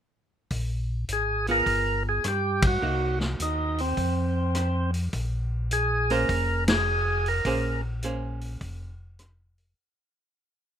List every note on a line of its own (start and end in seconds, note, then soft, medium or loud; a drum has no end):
0.50 1.05 A#1 medium
0.50 kick soft
0.50 open hi-hat soft
1.08 1.62 G#1 medium
1.08 closed hi-hat soft
1.13 1.47 G#4 medium
1.47 2.21 B3 medium
1.47 2.21 F4 soft
1.47 2.21 G#4 medium
1.47 open hi-hat soft
1.51 2.03 A#4 loud
1.66 2.20 G1 medium
1.66 kick soft
1.66 open hi-hat soft
2.09 2.26 G#4 medium
2.24 2.78 G2 medium
2.24 2.66 G4 medium
2.24 cross-stick medium
2.24 closed hi-hat soft
2.62 kick medium
2.62 ride medium
2.67 3.19 F#4 medium
2.82 3.36 C2 medium
2.82 3.97 A#3 soft
2.82 3.98 D#4 soft
2.82 3.98 F#4 medium
3.20 snare soft
3.40 3.93 D#2 medium
3.40 3.81 D#4 medium
3.40 closed hi-hat soft
3.78 4.91 C4 medium
3.78 open hi-hat soft
3.97 5.09 F2 medium
3.97 kick soft
3.97 open hi-hat soft
4.55 cross-stick medium
4.55 closed hi-hat soft
4.94 open hi-hat soft
5.13 6.25 A#1 medium
5.13 kick soft
5.13 open hi-hat soft
5.71 6.12 G#4 medium
5.71 closed hi-hat soft
6.10 6.83 A#3 medium
6.10 6.84 C#4 medium
6.10 6.84 G#4 medium
6.10 6.64 A#4 loud
6.10 6.84 C5 medium
6.10 open hi-hat soft
6.29 7.41 F1 medium
6.29 kick soft
6.29 open hi-hat soft
6.68 7.28 G#4 medium
6.68 snare medium
6.68 ride medium
7.26 7.81 A#4 medium
7.26 open hi-hat soft
7.45 8.57 A#1 medium
7.45 7.80 A#3 soft
7.45 7.80 C#4 soft
7.45 7.81 G#4 medium
7.45 7.81 C5 medium
7.45 kick soft
7.45 open hi-hat soft
8.02 8.93 A#3 soft
8.02 8.93 C#4 soft
8.02 8.93 G#4 medium
8.02 8.93 C5 soft
8.02 closed hi-hat soft
8.41 open hi-hat soft
8.61 9.74 F1 medium
8.61 kick soft
8.61 open hi-hat soft
9.19 cross-stick medium
9.19 closed hi-hat soft
9.58 open hi-hat soft